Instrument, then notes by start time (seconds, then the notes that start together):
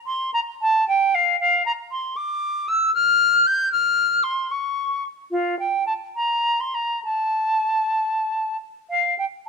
flute
0.06 C6
0.33 A#5
0.61 A5
0.88 G5
1.14 F5
1.39 F5
1.65 A#5
1.91 C6
2.16 D6
2.68 E6
2.94 F6
3.46 G6
3.72 F6
4.23 C6
4.51 C#6
5.30 F4
5.59 G5
5.86 A5
6.15 A#5
6.60 C6
6.74 A#5
7.04 A5
8.89 F5
9.18 G5